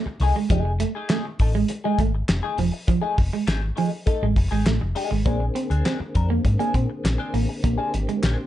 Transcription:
0.06 muted fingered electric bass stroke, muted clean electric guitar stroke
0.20 fingered electric bass C2, clean electric guitar A3 D#4 G#4, open hi-hat
0.36 clean electric guitar G#3, muted clean electric guitar stroke
0.50 fingered electric bass F1, clean electric guitar F3 A3 D#4 G#4, kick, closed hi-hat
0.65 muted clean electric guitar stroke
0.80 clean electric guitar A3, muted clean electric guitar stroke, closed hi-hat
0.95 clean electric guitar A3 D#4 G#4
1.09 clean electric guitar A3 D#4 G#4, snare, clap, closed hi-hat
1.26 muted clean electric guitar stroke
1.39 fingered electric bass A1, clean electric guitar A3 D#4 A4, kick, open hi-hat
1.54 clean electric guitar G#3, muted clean electric guitar stroke
1.68 muted clean electric guitar stroke, closed hi-hat
1.84 clean electric guitar G#3 A3 D#4 G#4
1.98 fingered electric bass G#1, clean electric guitar A3, muted clean electric guitar stroke, kick, closed hi-hat
2.15 muted clean electric guitar stroke
2.28 fingered electric bass F1, muted clean electric guitar stroke, snare, clap, closed hi-hat
2.43 clean electric guitar A3 D#4 G#4
2.58 fingered electric bass E1, clean electric guitar F3, open hi-hat
2.72 muted clean electric guitar stroke
2.87 clean electric guitar F3, muted clean electric guitar stroke, kick, closed hi-hat
3.02 clean electric guitar A3 D#4 G#4
3.17 fingered electric bass F1, muted clean electric guitar stroke, kick, open hi-hat
3.33 clean electric guitar G#3, muted clean electric guitar stroke
3.47 fingered electric bass G#1, clean electric guitar A3 D#4 G#4, snare, clap, closed hi-hat
3.62 muted clean electric guitar stroke
3.76 clean electric guitar F3 A3 D#4 G#4, open hi-hat
3.91 muted clean electric guitar stroke
4.06 clean electric guitar A3 D#4 A4, kick, closed hi-hat
4.22 fingered electric bass A1, clean electric guitar G#3
4.36 fingered electric bass F1, muted clean electric guitar stroke, kick, open hi-hat
4.51 fingered electric bass G#1, clean electric guitar G#3 A3 D#4 G#4
4.66 fingered electric bass A1, clean electric guitar A3, muted clean electric guitar stroke, snare, clap, closed hi-hat
4.81 fingered electric bass F1, muted clean electric guitar stroke
4.95 clean electric guitar A3 D#4 G#4, open hi-hat
5.11 fingered electric bass G#1, clean electric guitar G#3, muted clean electric guitar stroke
5.25 fingered electric bass A#1, tonewheel organ D3 A#3 C4 G#4, clean electric guitar A#3 C4 D4 G#4, kick, closed hi-hat
5.40 muted clean electric guitar stroke
5.55 clean electric guitar C4, muted clean electric guitar stroke, closed hi-hat
5.70 fingered electric bass D2, clean electric guitar C4 D4 G#4, closed hi-hat
5.85 clean electric guitar C4 D4 G#4, snare, clap, closed hi-hat
6.00 muted clean electric guitar stroke, muted fingered electric bass stroke
6.15 fingered electric bass F2, clean electric guitar C4 D4 A#4, kick, closed hi-hat
6.30 clean electric guitar A#3, muted clean electric guitar stroke
6.44 fingered electric bass G#2, muted clean electric guitar stroke, kick, closed hi-hat
6.59 clean electric guitar A#3 C4 D4 G#4, closed hi-hat
6.74 fingered electric bass A#2, clean electric guitar C4, kick, closed hi-hat
6.90 muted clean electric guitar stroke
7.04 fingered electric bass A#1, muted clean electric guitar stroke, snare, clap, closed hi-hat
7.18 clean electric guitar C4 D4 G#4
7.33 fingered electric bass A1, clean electric guitar A#3, muted clean electric guitar stroke, open hi-hat
7.49 muted clean electric guitar stroke
7.63 fingered electric bass A#1, clean electric guitar A#3, tonewheel organ G4, muted clean electric guitar stroke, kick, closed hi-hat
7.78 clean electric guitar C4 D4 G#4
7.94 fingered electric bass G#1, muted clean electric guitar stroke, closed hi-hat
8.09 clean electric guitar G#3, muted clean electric guitar stroke, closed hi-hat
8.23 fingered electric bass A#1, clean electric guitar C4 D4 G#4, snare, clap, closed hi-hat
8.38 muted clean electric guitar stroke

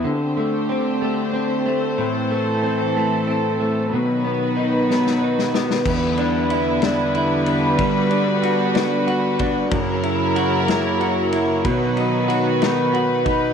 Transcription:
Already playing: clean electric guitar B3 E4
0.04 clean electric guitar D3, string section D3 A3 C4 G4 C5
0.37 clean electric guitar A3
0.69 clean electric guitar C4
1.02 clean electric guitar A3
1.33 clean electric guitar C4
1.66 clean electric guitar A3
1.98 clean electric guitar A2, string section E3 A4
2.31 clean electric guitar A3
2.63 clean electric guitar C4
2.97 clean electric guitar A3
3.27 clean electric guitar C4
3.60 clean electric guitar A3
3.93 clean electric guitar B2, string section D#3 F#3 B3 F#4 B4
4.25 clean electric guitar B3
4.57 clean electric guitar D#4
4.90 clean electric guitar B3, snare
5.07 snare
5.21 clean electric guitar D#4
5.39 snare
5.54 clean electric guitar B3, snare
5.71 snare
5.86 clean electric guitar E2, string section D3 G3 B3 E4 B4, kick, crash
6.17 clean electric guitar D4, ride
6.50 clean electric guitar E4, ride
6.82 clean electric guitar D4, snare, ride
7.15 clean electric guitar E4, ride
7.46 clean electric guitar D4, ride
7.78 clean electric guitar G3, string section F#4, kick, ride
8.11 clean electric guitar D4, ride
8.42 clean electric guitar F#4, ride
8.74 clean electric guitar D4, snare, ride
9.07 clean electric guitar F#4, ride
9.39 clean electric guitar D4, kick, ride
9.71 clean electric guitar F#2, string section C#3 F#3 A#3 E4 A#4, kick, ride
10.03 clean electric guitar E4, ride
10.36 clean electric guitar F#4, ride
10.68 clean electric guitar E4, snare, ride
11.01 clean electric guitar F#4, ride
11.32 clean electric guitar E4, ride
11.65 clean electric guitar B2, string section D#3 B3 F#4 B4, kick, ride
11.97 clean electric guitar D#4, ride
12.28 clean electric guitar F#4, ride
12.62 clean electric guitar D#4, snare, ride
12.93 clean electric guitar F#4, ride
13.25 clean electric guitar D#4, kick, ride

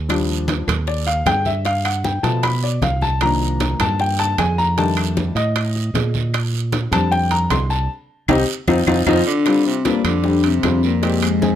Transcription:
Already playing: fingered electric bass D#2
0.09 grand piano F3 G3 D4, high bongo, high conga, high timbale, long guiro, claves
0.28 high bongo, high conga
0.48 high bongo, high conga, high timbale, short guiro
0.67 fingered electric bass D#2, high conga, low conga, high timbale, short guiro, claves
0.87 grand piano D5, high bongo, high conga, long guiro
1.07 grand piano F5, high bongo, high conga, high timbale
1.26 fingered electric bass G2, grand piano G5, high bongo, low bongo, high conga, high timbale, low timbale, short guiro, claves
1.45 grand piano E5, high bongo, high conga, short guiro
1.65 grand piano F5, high bongo, high conga, high timbale, long guiro
1.85 grand piano F#5, high bongo, high conga, high timbale, claves
2.04 grand piano G5, high bongo, high conga, short guiro
2.23 fingered electric bass B2, grand piano F3 A3 B3 A5, high conga, high timbale, short guiro
2.43 grand piano B5, high bongo, high conga, high timbale, long guiro, claves
2.63 grand piano D5, high bongo, high conga
2.81 fingered electric bass C2, grand piano F5, high bongo, low bongo, high conga, high timbale, short guiro
3.01 grand piano A5, high bongo, high conga, short guiro
3.21 grand piano D#3 F3 A#3 D4 A#5, high bongo, high timbale, long guiro, claves
3.41 high bongo, high conga
3.60 high bongo, high conga, high timbale, short guiro
3.79 fingered electric bass G2, grand piano A5, high conga, low conga, high timbale, short guiro, claves
3.99 grand piano G5, high bongo, high conga, long guiro
4.19 grand piano A5, high bongo, high conga, high timbale
4.38 fingered electric bass F2, grand piano G#5, high bongo, low bongo, high conga, high timbale, low timbale, short guiro, claves
4.58 grand piano A#5, high bongo, short guiro
4.77 grand piano D#3 G3 A3 D4 A5, high bongo, high timbale, long guiro
4.97 high bongo, high conga, high timbale, claves
5.17 high bongo, high conga, short guiro
5.35 fingered electric bass A2, grand piano D#5, high conga, high timbale, short guiro
5.56 high bongo, high conga, high timbale, long guiro, claves
5.76 high bongo, high conga
5.94 fingered electric bass A#2, high bongo, low bongo, high conga, high timbale, low timbale, short guiro
6.14 high bongo, high conga, short guiro
6.34 high bongo, high conga, high timbale, long guiro, claves
6.53 high bongo, high conga
6.72 high bongo, high conga, high timbale, short guiro
6.91 fingered electric bass F2, grand piano G3 C4 D4 A5, high conga, low conga, high timbale, short guiro, claves
7.12 grand piano G5, high bongo, high conga, long guiro
7.31 grand piano A#5, high bongo, high conga, high timbale
7.50 fingered electric bass C2, grand piano C6, high bongo, low bongo, high conga, high timbale, low timbale, short guiro, claves
7.70 grand piano A5, high bongo, short guiro
8.28 fingered electric bass C2, grand piano C4 D#4 G4, high bongo, high conga, high timbale, long guiro, claves
8.67 fingered electric bass F2, grand piano C4 D#4 F4, high bongo, high conga, high timbale, long guiro, claves
8.87 fingered electric bass F2, grand piano C4 D#4 F4, high bongo, high conga, high timbale, long guiro, claves
9.06 fingered electric bass F2, tenor saxophone F3, grand piano C4 D#4 F4, vibraphone F4, high bongo, high conga, high timbale, long guiro, claves
9.26 tenor saxophone D3, vibraphone D4
9.46 grand piano G3 C4 D4 F4, high bongo, high conga, high timbale, long guiro, claves
9.65 tenor saxophone C3, vibraphone C4, high bongo, high conga
9.84 tenor saxophone A#2, grand piano G3 C4 D4 F4, vibraphone A#3, high bongo, high conga, high timbale, short guiro
10.04 fingered electric bass F2, tenor saxophone D3, vibraphone D4, high timbale, short guiro, claves
10.24 grand piano G3 C4 D4 G4, high bongo, high conga, long guiro
10.44 tenor saxophone C3, vibraphone C4, high bongo, high conga, high timbale
10.62 fingered electric bass F2, grand piano G3 C4 D4 F4, high bongo, low bongo, high conga, high timbale, low timbale, short guiro, claves
10.83 tenor saxophone A#2, vibraphone A#3, high bongo, short guiro
11.02 tenor saxophone A#2, grand piano G#3 C4 D#4 G4, vibraphone A#3, high bongo, high conga, high timbale, long guiro
11.22 tenor saxophone G#2, vibraphone G#3, high bongo, high conga, high timbale, claves
11.42 grand piano G#3 C4 D#4 G#4, high bongo, high conga, short guiro

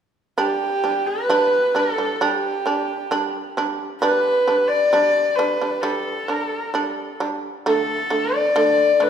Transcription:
0.38 shamisen G3 D4, horsehead fiddle G4
0.84 shamisen G3 D4
1.07 horsehead fiddle B4
1.30 shamisen G3 D4
1.75 shamisen G3 D4, horsehead fiddle A4
1.98 shamisen G3 D4
2.21 shamisen G3 D4, horsehead fiddle G4
2.66 shamisen G3 D4
3.11 shamisen G3 D4
3.57 shamisen G3 D4
4.00 shamisen G3 D4, horsehead fiddle B4
4.47 shamisen G3 D4
4.68 horsehead fiddle D5
4.93 shamisen G3 D4
5.36 shamisen G3 D4, horsehead fiddle B4
5.61 shamisen G3 D4
5.81 shamisen G3 D4, horsehead fiddle A4
6.28 shamisen G3 D4, horsehead fiddle A#4
6.43 horsehead fiddle A4
6.57 horsehead fiddle A#4
6.70 shamisen G3, horsehead fiddle A4
6.75 shamisen D4
7.20 shamisen G3 D4
7.66 shamisen D3 A3, horsehead fiddle A4
8.10 shamisen D3 A3
8.35 horsehead fiddle D5
8.56 shamisen D3 A3
9.00 shamisen D3 A3, horsehead fiddle B4

